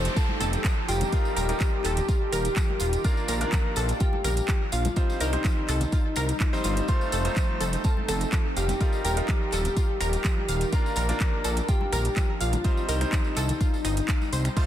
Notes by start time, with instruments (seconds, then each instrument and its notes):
Already playing: ambient pad F3 C4 D#4 G4 A4, grand piano A3 D#4 F4 C5, soft synth lead C5, synth bell C6, downlifter
0.05 closed hi-hat, tambourine
0.16 synth pluck F4 F5, soft synth lead A4, synth bell A5, kick, closed hi-hat, tambourine
0.29 high conga
0.40 analog synth bass F1, synth pluck A4 A5, finger snap, open hi-hat, tambourine, low conga
0.53 closed hi-hat, tambourine
0.64 synth pluck F3 F4, kick, clap, closed hi-hat, tambourine
0.88 analog synth bass F1, synth pluck F4 F5, soft synth lead G4, synth bell G5, open hi-hat, tambourine
1.01 closed hi-hat, tambourine, high conga, low conga
1.13 ambient pad D#3 F4 A#4, grand piano G3 D#4 F4 A#4, synth pluck F4 F5, kick, closed hi-hat, tambourine
1.25 tambourine
1.36 analog synth bass D#1, soft synth lead G4, synth pluck A#4 A#5, synth bell G5, open hi-hat, tambourine
1.49 grand piano G3 D#4 F4 A#4, closed hi-hat, tambourine
1.60 synth pluck F3 F4, kick, clap, closed hi-hat, tambourine
1.84 analog synth bass D#1, synth pluck A4 A5, clap, open hi-hat, tambourine
1.97 closed hi-hat, tambourine, low conga
2.08 synth pluck F4 F5, kick, closed hi-hat, tambourine
2.33 analog synth bass D#1, synth pluck A#4 A#5, finger snap, open hi-hat, tambourine
2.45 closed hi-hat, tambourine
2.56 synth pluck F3 F4, kick, clap, closed hi-hat, tambourine
2.70 high conga
2.80 analog synth bass D#1, synth pluck F4 F5, open hi-hat, tambourine
2.93 closed hi-hat, tambourine
3.04 grand piano A#3 D4 F4 A#4, ambient pad D4, synth pluck F4 F5, soft synth lead A#4, synth bell A#5, kick, closed hi-hat, tambourine
3.17 tambourine
3.28 analog synth bass A#1, synth pluck A#4 A#5, open hi-hat, tambourine
3.41 grand piano A#3 D4 F4 A#4, closed hi-hat, tambourine
3.52 synth pluck F3 F4, kick, clap, closed hi-hat, tambourine
3.76 analog synth bass A#1, synth pluck A4 A5, open hi-hat, tambourine
3.88 closed hi-hat, tambourine
4.00 synth pluck F4 F5, soft synth lead G4, synth bell G5, kick, closed hi-hat, tambourine
4.13 high conga
4.24 analog synth bass A#1, synth pluck A#4 A#5, finger snap, open hi-hat, tambourine, low conga
4.37 closed hi-hat, tambourine
4.48 synth pluck F3 F4, kick, clap, closed hi-hat, tambourine
4.72 analog synth bass A#1, soft synth lead F4, synth pluck F4 F5, synth bell F5, open hi-hat, tambourine
4.85 closed hi-hat, tambourine, high conga, low conga
4.96 ambient pad G3 C4 D#4, grand piano G3 C4 D#4 C5, synth pluck F4 F5, kick, closed hi-hat, tambourine
5.10 tambourine
5.20 analog synth bass C2, soft synth lead D#4, synth pluck A#4 A#5, synth bell D#5, open hi-hat, tambourine
5.33 grand piano G3 C4 D#4 C5, finger snap, closed hi-hat, tambourine
5.44 synth pluck F3 F4, kick, clap, closed hi-hat, tambourine
5.68 analog synth bass C2, synth pluck A4 A5, clap, open hi-hat, tambourine
5.81 closed hi-hat, tambourine, low conga
5.92 synth pluck F4 F5, kick, closed hi-hat, tambourine
6.16 analog synth bass C2, synth pluck A#4 A#5, finger snap, open hi-hat, tambourine
6.29 closed hi-hat, tambourine
6.40 synth pluck F3 F4, kick, clap, closed hi-hat, tambourine
6.53 grand piano G3 C4 D#4 C5, tambourine, high conga
6.64 analog synth bass G1, synth pluck F4 F5, open hi-hat, tambourine
6.77 closed hi-hat, tambourine
6.88 ambient pad F3 G4 A4, grand piano A3 D#4 F4 C5, synth pluck F4 F5, soft synth lead C5, synth bell C6, kick, closed hi-hat, tambourine
7.01 tambourine
7.12 analog synth bass F1, synth pluck A4 A5, open hi-hat, tambourine
7.25 grand piano A3 D#4 F4 C5, closed hi-hat, tambourine
7.36 synth pluck F3 F4, kick, clap, closed hi-hat, tambourine
7.61 analog synth bass F1, synth pluck A4 A5, open hi-hat, tambourine
7.73 closed hi-hat, tambourine
7.84 synth pluck F4 F5, soft synth lead A4, synth bell A5, kick, closed hi-hat, tambourine
7.97 high conga
8.08 analog synth bass F1, synth pluck A4 A5, finger snap, open hi-hat, tambourine, low conga
8.21 closed hi-hat, tambourine
8.32 synth pluck F3 F4, kick, clap, closed hi-hat, tambourine
8.56 analog synth bass F1, soft synth lead G4, synth pluck F5 F6, synth bell G5, open hi-hat, tambourine
8.68 closed hi-hat, tambourine, high conga, low conga
8.80 ambient pad D#3 F4 A#4, grand piano G3 D#4 F4 A#4, synth pluck F4 F5, kick, closed hi-hat, tambourine
8.93 tambourine
9.04 analog synth bass D#1, soft synth lead G4, synth pluck A#4 A#5, synth bell G5, open hi-hat, tambourine
9.17 grand piano G3 D#4 F4 A#4, closed hi-hat, tambourine
9.28 synth pluck F3 F4, kick, clap, closed hi-hat, tambourine
9.52 analog synth bass D#1, synth pluck A4 A5, clap, open hi-hat, tambourine
9.65 closed hi-hat, tambourine, low conga
9.77 synth pluck F4 F5, kick, closed hi-hat, tambourine
10.01 analog synth bass D#1, synth pluck A#4 A#5, finger snap, open hi-hat, tambourine
10.13 closed hi-hat, tambourine
10.24 synth pluck F3 F4, kick, clap, closed hi-hat, tambourine
10.38 high conga
10.48 analog synth bass D#1, synth pluck F5 F6, open hi-hat, tambourine
10.61 closed hi-hat, tambourine
10.72 grand piano A#3 D4 F4 A#4, ambient pad D4, synth pluck F4 F5, soft synth lead A#4, synth bell A#5, kick, closed hi-hat, tambourine
10.86 tambourine
10.96 analog synth bass A#1, synth pluck A#4 A#5, open hi-hat, tambourine
11.09 grand piano A#3 D4 F4 A#4, closed hi-hat, tambourine
11.20 synth pluck F3 F4, kick, clap, closed hi-hat, tambourine
11.44 analog synth bass A#1, synth pluck A4 A5, open hi-hat, tambourine
11.57 closed hi-hat, tambourine
11.68 synth pluck F4 F5, soft synth lead G4, synth bell G5, kick, closed hi-hat, tambourine
11.81 high conga
11.93 analog synth bass A#1, synth pluck A#4 A#5, finger snap, open hi-hat, tambourine, low conga
12.04 closed hi-hat, tambourine
12.16 synth pluck F3 F4, kick, clap, closed hi-hat, tambourine
12.41 analog synth bass A#1, soft synth lead F4, synth pluck F5 F6, synth bell F5, open hi-hat, tambourine
12.53 closed hi-hat, tambourine, high conga, low conga
12.64 grand piano G3 C4 D#4 C5, ambient pad G3 C4 D#4, synth pluck F4 F5, kick, closed hi-hat, tambourine
12.77 tambourine
12.88 analog synth bass C2, soft synth lead D#4, synth pluck A#4 A#5, synth bell D#5, open hi-hat, tambourine
13.01 grand piano G3 C4 D#4 C5, finger snap, closed hi-hat, tambourine
13.12 synth pluck F3 F4, kick, clap, closed hi-hat, tambourine
13.24 tambourine
13.36 analog synth bass C2, synth pluck A4 A5, clap, open hi-hat, tambourine
13.49 closed hi-hat, tambourine, low conga
13.61 synth pluck F4 F5, kick, closed hi-hat, tambourine
13.74 tambourine
13.85 analog synth bass G1, synth pluck D#4 D#5, finger snap, open hi-hat, tambourine
13.97 closed hi-hat, tambourine
14.08 synth pluck F5 F6, kick, clap, closed hi-hat, tambourine
14.21 tambourine, high conga
14.33 analog synth bass C2, synth pluck C5 C6, open hi-hat, tambourine, high conga
14.45 finger snap, closed hi-hat, tambourine
14.56 grand piano A3 D#4 F4 C5, synth pluck F4 F5, soft synth lead C5, synth bell C6, kick, closed hi-hat, tambourine, crash